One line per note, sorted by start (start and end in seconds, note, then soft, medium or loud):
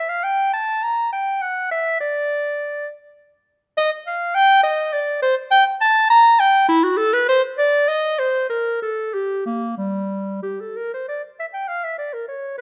0.00 0.11 E5 medium
0.09 0.25 F5 medium
0.24 0.53 G5 medium
0.54 0.85 A5 medium
0.83 1.12 A#5 medium
1.12 1.43 G5 medium
1.42 1.71 F#5 medium
1.71 1.99 E5 medium
2.01 2.87 D5 medium
3.77 3.90 D#5 loud
4.07 4.36 F5 medium
4.35 4.62 G5 loud
4.63 4.94 D#5 loud
4.93 5.22 D5 medium
5.22 5.35 C5 loud
5.51 5.64 G5 loud
5.81 6.09 A5 loud
6.10 6.41 A#5 loud
6.40 6.68 G5 loud
6.68 6.85 E4 loud
6.84 6.99 F#4 medium
6.97 7.15 A4 loud
7.13 7.28 B4 loud
7.28 7.42 C5 loud
7.58 7.90 D5 loud
7.88 8.20 D#5 loud
8.19 8.49 C5 medium
8.49 8.81 A#4 medium
8.82 9.15 A4 medium
9.14 9.45 G4 medium
9.46 9.77 A#3 medium
9.77 10.41 G3 medium
10.43 10.62 G4 medium
10.60 10.78 A4 medium
10.76 10.92 A#4 medium
10.94 11.08 C5 medium
11.08 11.22 D5 medium
11.40 11.46 E5 medium
11.53 11.69 G5 medium
11.68 11.86 F5 medium
11.84 11.97 E5 medium
11.98 12.15 D5 medium
12.13 12.27 A#4 medium
12.28 12.57 C#5 medium
12.58 12.61 B4 medium